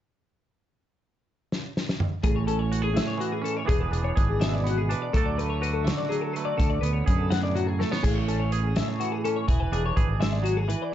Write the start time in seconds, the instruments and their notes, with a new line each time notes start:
1.52 snare
1.77 snare
1.89 snare
2.00 mid tom
2.23 fingered electric bass A1, clean electric guitar A2 G#4, kick, closed hi-hat
2.36 clean electric guitar C#5
2.47 clean electric guitar C#4 A4, closed hi-hat
2.59 clean electric guitar C#5
2.72 clean electric guitar F#4 B4, closed hi-hat
2.82 clean electric guitar G#4
2.93 clean electric guitar A2 E5, snare, closed hi-hat
3.07 clean electric guitar C#5
3.17 clean electric guitar E3 F#4, closed hi-hat
3.32 clean electric guitar G#4
3.42 clean electric guitar C#4 A4, closed hi-hat
3.57 clean electric guitar C#5
3.65 clean electric guitar E3 B3 D4 G#4
3.69 fingered electric bass E1, kick, closed hi-hat
3.80 clean electric guitar B4
3.91 fingered electric bass E1, clean electric guitar D4 G#4, closed hi-hat
4.04 clean electric guitar C#5
4.16 fingered electric bass G#1, clean electric guitar G#4 B4, kick, closed hi-hat
4.29 clean electric guitar G#4
4.40 clean electric guitar B2 E5, snare, closed hi-hat
4.53 clean electric guitar D5
4.64 clean electric guitar B3 F#4, closed hi-hat
4.78 clean electric guitar G#4
4.89 clean electric guitar D4 B4, closed hi-hat
5.02 clean electric guitar D5
5.13 fingered electric bass D2, clean electric guitar D3 F#3 A3 D4 A4, kick, closed hi-hat
5.26 clean electric guitar D5
5.38 clean electric guitar A3 B4, closed hi-hat
5.50 clean electric guitar C#5
5.62 clean electric guitar F#4 B4, closed hi-hat
5.73 clean electric guitar A4
5.85 clean electric guitar D3 E5, snare, closed hi-hat
5.98 clean electric guitar D5
6.09 clean electric guitar F#3 G#4, closed hi-hat
6.21 clean electric guitar A4
6.33 clean electric guitar A3 B4, closed hi-hat
6.45 clean electric guitar D5
6.57 fingered electric bass D2, clean electric guitar D3 A4, kick, closed hi-hat
6.70 clean electric guitar D5
6.81 fingered electric bass D2, clean electric guitar B3 B4, closed hi-hat
6.93 clean electric guitar C#5
7.05 fingered electric bass F#2, clean electric guitar G#4 B4, kick, closed hi-hat
7.18 clean electric guitar A4
7.30 clean electric guitar A2 F#5, snare, closed hi-hat
7.43 clean electric guitar D5
7.55 clean electric guitar F#3 F#4, closed hi-hat
7.67 clean electric guitar G#4
7.79 clean electric guitar A3 A4, snare
7.91 clean electric guitar B3 C#5, snare
8.03 fingered electric bass A1, clean electric guitar A2 G#4, kick, closed hi-hat, crash
8.15 clean electric guitar C#5
8.28 clean electric guitar C#4 A4, closed hi-hat
8.39 clean electric guitar C#5
8.52 clean electric guitar G#4 B4, closed hi-hat
8.64 clean electric guitar G#4
8.76 clean electric guitar A2 E5, snare, closed hi-hat
8.89 clean electric guitar C#5
9.00 clean electric guitar E3 F#4, closed hi-hat
9.12 clean electric guitar G#4
9.24 clean electric guitar C#4 A4, closed hi-hat
9.36 clean electric guitar C#5
9.47 fingered electric bass E1, clean electric guitar E3 G#4, kick, closed hi-hat
9.60 clean electric guitar B4
9.72 fingered electric bass E1, clean electric guitar D4 G#4, closed hi-hat
9.86 clean electric guitar C#5
9.97 fingered electric bass G#1, clean electric guitar G#4 B4, kick, closed hi-hat
10.09 clean electric guitar G#4
10.20 clean electric guitar G#3 E5, snare, closed hi-hat
10.33 clean electric guitar D5
10.43 clean electric guitar F#3 F#4, closed hi-hat
10.57 clean electric guitar G#4
10.68 clean electric guitar E3 B4, closed hi-hat
10.82 clean electric guitar D5